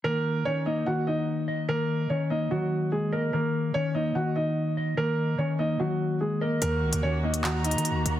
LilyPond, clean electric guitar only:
\new Staff \with { instrumentName = "Clean electric guitar" } { \clef bass \time 4/4 \key ees \minor \tempo 4 = 146 ees4 ees8 bes8 ees4. ees''8 | ees4 ees8 bes8 ees4. ees''8 | ees4 ees8 bes8 ees4. ees''8 | ees4 ees8 bes8 ees4. ees''8 |
ees4 ees8 bes8 ees4. ees''8 | }